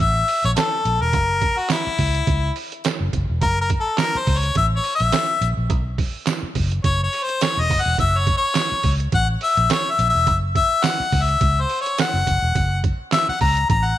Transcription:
0.00 A1 E5
0.28 open hi-hat
0.44 A#1 C#5, closed hi-hat
0.56 A4, snare, clap, closed hi-hat, tambourine
0.85 A#1, closed hi-hat
1.00 E1 A#4
1.13 F#1, kick, closed hi-hat
1.42 kick, closed hi-hat
1.58 F#4
1.70 E4, snare, clap, closed hi-hat, tambourine
1.87 muted fingered electric bass stroke
1.99 C#2, kick, open hi-hat
2.15 closed hi-hat
2.27 C#2, kick, closed hi-hat
2.56 open hi-hat
2.72 closed hi-hat
2.84 snare, clap, closed hi-hat, tambourine
3.00 F#1
3.13 F#1, kick, closed hi-hat
3.29 E1
3.42 F#1 A#4, kick, closed hi-hat
3.61 A#4
3.70 kick, closed hi-hat
3.80 A4
3.98 A#4, snare, clap, closed hi-hat, tambourine
4.15 C5, muted fingered electric bass stroke
4.27 C#2, kick, open hi-hat
4.38 C#5
4.43 closed hi-hat
4.55 A1 E5, kick, closed hi-hat
4.76 C#5
4.84 open hi-hat
4.95 E5
5.00 A#1, closed hi-hat
5.12 snare, clap, closed hi-hat, tambourine
5.41 A#1, closed hi-hat
5.57 A#1
5.70 B1, kick, closed hi-hat
5.98 kick, open hi-hat
6.27 snare, clap, closed hi-hat, tambourine
6.43 muted fingered electric bass stroke
6.55 F#1, kick, open hi-hat
6.72 closed hi-hat
6.84 F#1 C#5, kick, closed hi-hat
7.03 C#5
7.13 open hi-hat
7.23 C5
7.29 closed hi-hat
7.41 C#5, snare, clap, closed hi-hat, tambourine
7.57 E1 D#5
7.70 F#1, kick, open hi-hat
7.81 F#5
7.86 E1
7.98 F#1 E5, kick, closed hi-hat
8.18 C#5
8.27 kick, closed hi-hat
8.37 C#5
8.55 snare, clap, closed hi-hat, tambourine
8.72 muted fingered electric bass stroke
8.83 C#2, kick, open hi-hat
9.00 closed hi-hat
9.12 A1 F#5, kick, closed hi-hat
9.41 E5, open hi-hat
9.57 A#1, closed hi-hat
9.70 C#5, snare, clap, closed hi-hat, tambourine
9.91 E5
9.99 A#1, closed hi-hat
10.09 E5
10.15 E1
10.27 F#1, kick, closed hi-hat
10.55 E5, kick, closed hi-hat
10.84 F#5, snare, clap, closed hi-hat, tambourine
11.00 muted fingered electric bass stroke
11.12 C#2, kick, open hi-hat
11.23 E5
11.29 closed hi-hat
11.41 C#2, kick, closed hi-hat
11.61 C5
11.70 open hi-hat
11.81 C#5
11.86 closed hi-hat
11.98 F#5, snare, clap, closed hi-hat, tambourine
12.14 F#1
12.27 F#1, kick, closed hi-hat
12.42 E1
12.55 F#1, kick, closed hi-hat
12.84 kick, closed hi-hat
13.12 E5, snare, clap, closed hi-hat, tambourine
13.29 F#5, muted fingered electric bass stroke
13.41 C#2 A#5, kick, open hi-hat
13.57 closed hi-hat
13.70 A1 A#5, kick, closed hi-hat
13.86 F#5

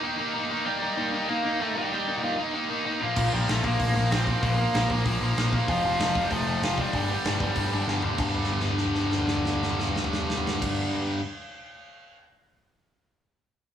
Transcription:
0.03 D#3 A#3 D#4
0.19 D#3 A#3 D#4
0.34 D#3 A#3 D#4
0.51 D#3 A#3 D#4
0.66 D#3 G3 A#3 D#4 G4
0.82 D#3 A#3 D#4
0.97 D#3 A#3 D#4
1.14 D#3 A#3 D#4
1.29 D#3 A#3 D#4 A#4
1.44 D#3 A#3 D#4
1.60 D#3 A3 A#3 D#4 A4
1.76 D#3 G3 A#3 D#4 G4
1.91 D#3 A#3 D#4
2.08 D#3 A#3 D#4
2.22 D#3 A#3 D#4 F4
2.39 D#3 A#3 D#4
2.54 D#3 A#3 D#4
2.70 D#3 A#3 D#4
2.85 D#3 A#3 D#4
3.01 A#2 F3 A#3 F4
3.16 A#1 A#2 F3 A#3 F4, kick, crash
3.29 A#1 A#2 F4
3.34 F3 G3 A#3 G4
3.48 A#1 A#2 F3 A3 A#3 A4, snare, open hi-hat
3.64 A#1 A#2 F3 A#3 A#4, kick
3.80 A#1 A#2 F3 A#3, kick, open hi-hat
3.95 A#1 A#2 F3 A#3
4.11 A#1 A#2 F3 A#3 C4 C5, snare, open hi-hat
4.27 A#2 F3 A#3, kick
4.42 A#1 A#2 F3 A#3 A#4, kick, open hi-hat
4.60 A#2 F3 A#3
4.74 A#1 A#2 F3 A#3, snare, open hi-hat
4.90 A#1 A#2 F3 A#3, kick
5.05 A#1 A#2 F3 A#3, kick, open hi-hat
5.21 A#1 A#2 F3 A#3
5.37 A#1 A#2 F3 A#3, snare, open hi-hat
5.53 A#2 F3 A#3, kick
5.68 F1 F2 C3 F3 F4, kick, open hi-hat
5.84 F1 F2 C3 F3
6.00 F1 F2 C3 F3, snare, open hi-hat
6.15 F1 F2 C3 F3, kick
6.24 G4
6.31 F1 F2 C3 F3 A3 A4, kick, open hi-hat
6.47 F1 F2 C3 F3
6.62 F1 F2 C3 F3 F4, snare, open hi-hat
6.78 F2 C3 F3 G3 G4, kick
6.93 G1 G2 D3 G3, kick, open hi-hat
7.10 G2 D3 G3
7.25 G1 G2 D3 G3, snare, open hi-hat
7.40 G1 G2 D3 G3, kick
7.56 G1 G2 D3 G3, kick, open hi-hat
7.72 G1 G2 D3 G3
7.87 G1 G2 D3 G3, snare
8.02 G2 D3 G3, floor tom
8.18 G1 G2 D3, kick, crash
8.23 G3
8.34 floor tom
8.44 snare
8.52 floor tom
8.60 snare
8.68 floor tom
8.78 snare
8.84 floor tom
8.95 snare
9.02 floor tom
9.11 snare
9.18 floor tom
9.28 snare
9.35 floor tom
9.45 snare
9.53 floor tom
9.63 snare
9.69 floor tom
9.80 snare
9.87 floor tom
9.96 snare
10.04 floor tom
10.13 snare
10.20 floor tom
10.30 snare
10.38 floor tom
10.47 snare
10.62 kick, crash

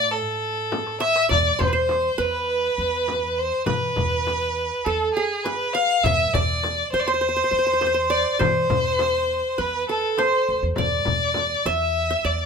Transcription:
Already playing: A2 D5
0.11 A4
0.42 darbuka ka
0.57 darbuka ka
0.72 darbuka tek, frame drum
0.87 darbuka ka
1.00 E5, darbuka tek
1.16 darbuka ka
1.29 E2 D5, frame drum, darbuka dum
1.46 darbuka ka
1.59 E2 C5, darbuka dum, frame drum
1.67 B4
1.73 C5, darbuka ka
1.89 darbuka tek, frame drum
2.18 E2 B4, darbuka ka
2.78 E2
3.08 darbuka tek, frame drum
3.38 C5
3.53 darbuka ka
3.66 E3 B4, frame drum, darbuka dum
3.83 darbuka ka
3.96 E2, frame drum, darbuka dum
4.13 darbuka ka
4.27 darbuka tek, frame drum
4.57 darbuka ka
4.85 E2 A4
5.14 G#4
5.44 B4, darbuka tek, frame drum
5.60 darbuka ka
5.73 F5
5.90 darbuka ka
6.03 E2 E5, frame drum, darbuka dum
6.19 darbuka ka
6.34 E2 D5, frame drum, darbuka dum
6.50 darbuka ka
6.63 darbuka tek, frame drum
6.92 E2 C5, darbuka ka
7.00 D5
7.07 C5
7.14 C5
7.21 C5
7.29 C5
7.36 C5
7.44 C5
7.51 E2 C5
7.59 C5
7.66 C5
7.73 C5
7.81 C5, darbuka tek, frame drum
7.87 C5
7.94 C5
8.10 D5
8.26 darbuka ka
8.34 D5
8.39 E3 C5, frame drum, darbuka dum
8.56 darbuka ka
8.70 E2, frame drum, darbuka dum
8.86 darbuka ka
8.99 darbuka tek, frame drum
9.30 darbuka ka
9.58 E2 B4, darbuka ka
9.89 A4
10.04 darbuka ka
10.18 C5, darbuka tek, frame drum
10.33 darbuka ka
10.49 D2
10.63 E2
10.76 E2 D5, frame drum, darbuka dum
10.92 darbuka ka
11.05 E2, frame drum, darbuka dum
11.21 darbuka ka
11.34 darbuka tek, frame drum
11.65 E2 E5, darbuka ka
12.10 E5
12.25 E2 D5

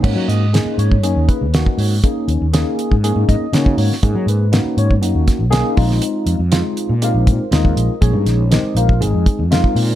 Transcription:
0.02 G#2 A#3 C#4 D#4 F#4 C#5, kick, crash
0.16 F#3
0.28 G#2 D#5, closed hi-hat
0.53 A#3 C#4 D#4 G#4, snare, closed hi-hat
0.65 muted fretless electric bass stroke
0.74 G#2 C5
0.79 C#5, closed hi-hat
0.92 kick
1.03 F#2 A#3 C#4 D#4 G#4, closed hi-hat
1.16 D#2
1.28 B4, kick, closed hi-hat
1.41 D#2
1.54 A#3 C#4 D#4 F#4, snare, closed hi-hat
1.66 kick
1.78 G#2 C#5, open hi-hat
2.03 A#3 C#4 D#4 G#4, kick, closed hi-hat
2.28 D#2, closed hi-hat
2.41 D#2
2.53 A#3 C#4 D#4 G#4, snare, closed hi-hat
2.79 closed hi-hat
2.91 G#2, kick
3.03 A#3 C#4 D#4 G#4 C#5, closed hi-hat
3.16 G#2
3.28 G#2 D#5, kick, closed hi-hat
3.40 muted fretless electric bass stroke
3.53 C#3 A#3 C#4 D#4 F#4, snare, closed hi-hat
3.66 kick
3.77 G#2 C#5, open hi-hat
3.92 snare
4.02 G#2 A#3 C#4 D#4 G#4, kick, closed hi-hat
4.15 F#3
4.26 G#2 B4, closed hi-hat
4.52 A#3 C#4 D#4 F#4, snare, closed hi-hat
4.65 muted fretless electric bass stroke
4.77 G#2 C#5, closed hi-hat
4.91 kick
5.01 F#2 A#3 C#4 D#4 F#4, closed hi-hat
5.15 D#2
5.28 kick, snare, closed hi-hat
5.39 B1
5.50 A#3 C#4 D#4 G#4, snare, closed hi-hat
5.76 A#1 G#3 C4 D#4 F4, kick, open hi-hat
5.91 snare
6.02 closed hi-hat
6.26 F2, closed hi-hat
6.39 F2
6.51 G#3 C4 D#4 F4, snare, closed hi-hat
6.77 closed hi-hat
6.89 A#2
7.02 G#3 C4 D#4 F4 G4 A#4 C5 F5, closed hi-hat
7.14 A#1
7.27 A#2, kick, closed hi-hat
7.40 muted fretless electric bass stroke
7.51 D#2 G#3 C4 D#4 F4 A#4 C5 D#5, snare, closed hi-hat
7.65 kick
7.76 A#1, closed hi-hat
8.01 A#1 G#3 A#3 C#4 D#4 G#4 C#5, kick, closed hi-hat
8.13 G2
8.25 A#1, snare, closed hi-hat
8.50 G#3 C4 D#4 G4 A#4 C5 D#5, snare, closed hi-hat
8.63 muted fretless electric bass stroke
8.75 A#1 F4 A#4 C5 F5, closed hi-hat
8.89 kick
9.00 G#1 G#3 C4 D#4 G#4, closed hi-hat
9.14 F2
9.26 muted fretless electric bass stroke, kick, closed hi-hat
9.39 F2
9.51 G#3 C4 D#4 F4 A#4 C5 F5, snare, closed hi-hat
9.64 kick
9.75 A#2, open hi-hat

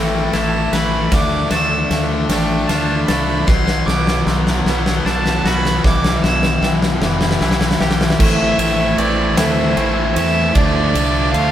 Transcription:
Already playing: A1 A2 E3 A3 C4 A4 B4 E5 G5 A5
0.32 A1 A2 E3 A3 E4 A5, snare, ride
0.72 A1 A2 E3 A3 B4 E5 B5, snare, ride
1.11 D2 D3 A3 D4 A4 D5 F5 A5 D6, kick, snare, ride
1.51 D2 D3 A3 D4 E6, snare, ride
1.90 D2 A3 F5, snare, ride
2.29 A1 D3 A3 D4 D5 G5, snare, ride
2.68 D2 D3 A3 D4 F4 A5, snare, ride
3.06 C2 D3 A3 D4 A4 F5 B5, snare, ride
3.46 B1 B2 F#3 B3 F#4 D5 F#5 C6, kick, snare
3.68 snare
3.86 B1 B2 F#3 B3 D6, snare
4.07 snare
4.26 B1 F#3 C6, snare
4.47 snare
4.65 B1 B2 F#3 B3 B4 F#5, snare
4.86 snare
5.05 B1 B2 F#3 B3 D4 A5, snare
5.26 snare
5.44 B1 B2 F#3 B3 F#4 F#5 B5, snare
5.65 snare
5.82 B1 E2 B2 E3 G4 E5 G5 D6, kick, snare
6.04 snare
6.23 B1 E2 B2 E3 B3 E6, snare
6.43 snare
6.62 B1 E3 G5, snare
6.82 snare
7.01 F1 E2 B2 E3 B3 E5, snare
7.21 snare
7.31 snare
7.40 B1 E2 B2 E3 E4, snare
7.51 snare
7.61 snare
7.71 snare
7.79 B1 E2 B2 E3 G4 G5, snare
7.91 snare
8.01 snare
8.10 snare
8.18 A1 A2 E3 A3 C4 E4 A4 E5 A5 B5, kick, crash
8.57 A1 A3 C4 E4, ride
8.97 A1 E3 A3 C4 E4 B4 D5, ride
9.36 D2 A2 E3 A3 C4 E4 A4 C5, snare, ride
9.75 A1 E3 A3 C4 E4, ride
10.15 E2 A3 C4 E4 E5, ride
10.54 D2 D3 F3 A3 D4 F4 D5 D6, kick, ride
10.93 C2 F3 A3 D4, ride
11.31 D2 D3 F3 F5, ride
11.36 A3 D4

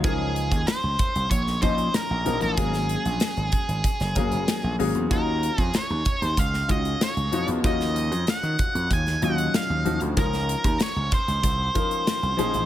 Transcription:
0.04 C#2 F3 C#4 D#4 G#4 A#4, kick, closed hi-hat
0.36 closed hi-hat
0.52 D#2, kick, closed hi-hat
0.67 C5, snare, closed hi-hat
0.83 C#2
0.99 kick, closed hi-hat
1.15 C2, closed hi-hat
1.31 A#1 C#5, kick, closed hi-hat
1.47 snare
1.62 A#1 F3 C#4 D#4 C5 D#5, kick, closed hi-hat
1.78 closed hi-hat
1.94 A#4, snare, closed hi-hat
2.10 A#1
2.25 A#1 F3 C#4 D#4 A#4, closed hi-hat
2.41 A1 G#4, closed hi-hat
2.57 G#1 F#3 A#3 C#4 G#4, kick, closed hi-hat
2.74 snare, closed hi-hat
2.89 closed hi-hat
3.05 A#1, closed hi-hat
3.20 snare, closed hi-hat
3.37 G#1, closed hi-hat
3.52 kick, closed hi-hat
3.68 G#1, closed hi-hat
3.84 kick, closed hi-hat
4.00 F#1, snare, closed hi-hat
4.15 F#1 F#3 A#3 C#4 G#4, kick, closed hi-hat
4.32 F#1, closed hi-hat
4.48 snare, closed hi-hat
4.64 A#1
4.79 G#1 F#3 A#3 C#4 G#4, open hi-hat
4.95 E2, closed hi-hat
5.10 D#2 C#4 D#4 F4 F#4 A#4, kick, closed hi-hat
5.43 closed hi-hat
5.58 F2 G#4, kick, closed hi-hat
5.74 C#5, snare, closed hi-hat
5.90 D#2
6.05 kick, closed hi-hat
6.21 D#2 C5, closed hi-hat
6.37 C#2 F5, kick, closed hi-hat
6.54 snare
6.68 C#2 C#4 D#4 F4 F#4 D#5, kick, closed hi-hat
6.85 closed hi-hat
7.01 C#5, snare, closed hi-hat
7.16 C#2, closed hi-hat
7.32 F2 F3 C#4 D#4 F#4, closed hi-hat
7.48 E2, closed hi-hat
7.63 D#2 C#4 D#4 F4 F#4 D#5, kick, closed hi-hat
7.81 snare, closed hi-hat
7.96 closed hi-hat
8.11 F2, closed hi-hat
8.27 F#5, muted slap bass stroke, snare, closed hi-hat
8.43 D#3, closed hi-hat
8.59 kick, closed hi-hat
8.75 F2, closed hi-hat
8.91 D#2 G#5, kick, closed hi-hat
9.07 snare, closed hi-hat
9.21 D#2 F#3 C#4 D#4 F4 F#5, closed hi-hat
9.29 F#4
9.38 closed hi-hat
9.54 F5, snare, closed hi-hat
9.70 D#2
9.85 D#2 F3 C#4 D#4 F#4, closed hi-hat
10.01 D2, closed hi-hat
10.16 C#2 F3 C#4 D#4 A#4, kick, closed hi-hat
10.33 snare, closed hi-hat
10.49 closed hi-hat
10.64 D#2, kick, closed hi-hat
10.79 C#5, snare, closed hi-hat
10.96 C#2
11.11 C5, kick, closed hi-hat
11.28 C#2, closed hi-hat
11.43 C2, kick, closed hi-hat
11.74 F3 C#4 D#4 A#4, kick, closed hi-hat
11.91 closed hi-hat
12.07 snare, closed hi-hat
12.23 C2, closed hi-hat
12.37 A#1 F3 C#4 D#4 G#4, closed hi-hat
12.54 A1, closed hi-hat

